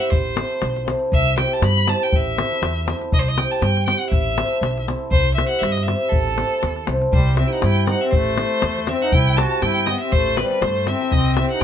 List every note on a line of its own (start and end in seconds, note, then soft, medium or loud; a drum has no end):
0.00 0.12 E5 medium
0.10 0.42 A1 medium
0.10 0.86 C5 medium
0.10 davul low medium
0.36 0.56 C4 medium
0.36 0.56 E4 medium
0.36 0.56 A4 medium
0.36 0.57 C5 medium
0.36 davul high medium
0.62 0.92 B1 medium
0.62 davul high medium
0.76 davul high soft
0.85 1.05 C4 medium
0.85 1.06 E4 medium
0.85 1.06 A4 medium
0.85 1.06 C5 medium
0.85 davul high medium
1.12 1.42 C2 medium
1.12 1.36 E5 loud
1.12 davul low medium
1.36 1.56 C4 medium
1.36 1.56 E4 medium
1.36 1.56 G4 medium
1.36 1.57 C5 medium
1.36 1.55 G5 medium
1.36 davul high medium
1.53 1.65 A5 medium
1.62 1.92 G2 medium
1.62 1.90 B5 loud
1.62 davul high medium
1.77 davul high soft
1.86 2.06 C4 medium
1.86 2.06 E4 medium
1.86 2.07 G4 medium
1.86 2.07 C5 medium
1.86 2.05 A5 medium
1.86 davul high medium
2.03 2.17 G5 medium
2.13 2.43 A1 medium
2.13 2.89 E5 medium
2.13 davul low medium
2.36 2.56 C4 medium
2.36 2.57 E4 medium
2.36 2.56 A4 soft
2.36 2.57 C5 medium
2.36 davul high medium
2.52 davul high soft
2.62 2.92 E2 medium
2.62 davul high medium
2.86 3.06 C4 medium
2.86 3.06 E4 medium
2.86 3.06 A4 medium
2.86 3.07 C5 medium
2.86 davul high medium
3.02 davul high soft
3.12 3.42 C2 medium
3.12 3.21 D#5 loud
3.12 davul low loud
3.19 3.30 C5 medium
3.28 3.39 D#5 medium
3.38 3.57 C4 medium
3.38 3.57 E4 medium
3.38 3.57 G4 medium
3.38 3.58 C5 medium
3.38 3.53 G5 medium
3.38 davul high medium
3.51 3.63 A5 medium
3.62 3.92 G2 medium
3.62 3.86 G5 medium
3.62 davul high medium
3.77 davul high soft
3.86 4.06 C4 medium
3.86 4.07 E4 soft
3.86 4.07 G4 medium
3.86 4.07 C5 medium
3.86 4.01 G5 medium
3.86 davul high medium
3.99 4.09 F#5 medium
4.10 4.42 A1 medium
4.10 4.82 E5 medium
4.10 davul low medium
4.37 4.56 C4 medium
4.37 4.57 E4 medium
4.37 4.57 A4 medium
4.37 4.57 C5 medium
4.37 davul high medium
4.61 4.92 B1 medium
4.61 davul high medium
4.78 davul high soft
4.87 5.07 C4 medium
4.87 5.07 E4 medium
4.87 5.07 A4 medium
4.87 5.07 C5 medium
4.87 davul high medium
5.11 5.41 C2 medium
5.11 5.34 C5 loud
5.11 davul low medium
5.35 5.56 C4 medium
5.35 5.57 E4 soft
5.35 5.57 G4 medium
5.35 5.48 E5 medium
5.35 davul high medium
5.39 5.57 C5 medium
5.49 5.60 F#5 medium
5.59 5.92 G2 medium
5.59 5.73 E5 medium
5.63 davul high medium
5.72 5.84 D#5 medium
5.77 davul high soft
5.83 6.11 E5 medium
5.87 6.06 C4 medium
5.87 6.07 E4 soft
5.87 6.07 G4 medium
5.87 6.08 C5 medium
5.87 davul high medium
6.10 6.42 A1 medium
6.10 6.86 A4 medium
6.10 davul low medium
6.27 davul high soft
6.36 6.56 C4 medium
6.36 6.56 E4 soft
6.36 6.56 A4 soft
6.36 6.57 C5 medium
6.36 davul high medium
6.63 6.85 D#2 medium
6.63 davul high medium
6.76 davul high soft
6.86 7.10 C2 medium
6.86 7.06 C4 medium
6.86 7.06 E4 medium
6.86 7.06 A4 medium
6.86 7.07 C5 medium
6.86 davul high medium
7.02 davul high soft
7.12 7.43 C2 loud
7.12 7.35 G3 medium
7.12 7.36 C5 medium
7.12 davul low medium
7.37 7.47 C4 medium
7.37 7.56 C4 medium
7.37 7.57 E4 medium
7.37 7.57 G4 medium
7.37 7.57 C5 medium
7.37 7.49 E5 medium
7.37 davul high medium
7.48 7.62 D#4 soft
7.48 7.51 E4 soft
7.48 7.54 G5 soft
7.52 7.63 F#5 soft
7.62 7.93 G2 medium
7.62 7.85 E4 medium
7.62 7.86 G5 medium
7.62 davul high medium
7.76 davul high soft
7.86 8.06 C4 soft
7.86 8.00 D#4 medium
7.86 8.06 E4 soft
7.86 8.06 G4 medium
7.86 8.07 C5 medium
7.86 8.03 F#5 medium
7.86 davul high medium
8.01 8.13 C4 medium
8.01 8.13 E5 medium
8.11 8.42 A1 medium
8.11 8.88 A3 medium
8.11 8.90 C5 loud
8.11 davul low medium
8.37 8.56 C4 medium
8.37 8.56 E4 medium
8.37 8.56 A4 medium
8.37 8.57 C5 medium
8.37 davul high medium
8.62 8.92 E2 medium
8.62 davul high medium
8.77 davul high soft
8.87 9.06 C4 medium
8.87 9.02 C4 medium
8.87 9.06 E4 soft
8.87 9.07 A4 medium
8.87 9.07 C5 medium
8.87 9.04 E5 medium
8.87 davul high medium
9.02 9.13 D#4 medium
9.02 9.14 F#5 medium
9.12 9.42 C2 loud
9.12 9.38 E4 medium
9.12 9.38 G5 loud
9.12 davul low loud
9.35 9.55 C4 medium
9.35 9.55 E4 medium
9.35 9.63 F#4 medium
9.35 9.56 G4 medium
9.35 9.56 C5 medium
9.35 9.63 A5 medium
9.35 davul high medium
9.62 9.92 G2 medium
9.62 9.88 E4 medium
9.62 9.88 G5 medium
9.62 davul high medium
9.77 davul high soft
9.86 10.01 B3 medium
9.86 10.06 C4 medium
9.86 10.06 E4 soft
9.86 10.07 G4 medium
9.86 10.07 C5 medium
9.86 10.00 D#5 medium
9.86 davul high medium
10.00 10.12 C4 medium
10.00 10.14 E5 medium
10.12 10.42 A1 medium
10.12 10.38 A3 medium
10.12 10.38 C5 loud
10.12 davul low medium
10.28 davul high soft
10.37 10.63 G3 medium
10.37 10.56 C4 medium
10.37 10.56 E4 medium
10.37 10.56 A4 medium
10.37 10.63 B4 medium
10.37 10.57 C5 medium
10.37 davul high medium
10.51 davul high soft
10.61 10.91 G2 medium
10.61 10.87 A3 medium
10.61 10.89 C5 medium
10.61 davul high medium
10.86 11.05 C4 soft
10.86 11.13 C4 medium
10.86 11.05 E4 soft
10.86 11.06 A4 medium
10.86 11.06 C5 medium
10.86 11.13 E5 medium
10.86 davul high medium
11.01 davul high soft
11.11 11.41 C2 medium
11.11 11.37 C4 medium
11.11 11.35 D#5 medium
11.11 davul low medium
11.36 11.55 C4 medium
11.36 11.50 C4 medium
11.36 11.56 E4 medium
11.36 11.56 G4 medium
11.36 11.56 C5 medium
11.36 11.49 E5 medium
11.36 davul high medium
11.51 11.62 D#4 medium
11.51 11.62 F#5 medium
11.60 11.64 G2 medium
11.60 11.64 G5 medium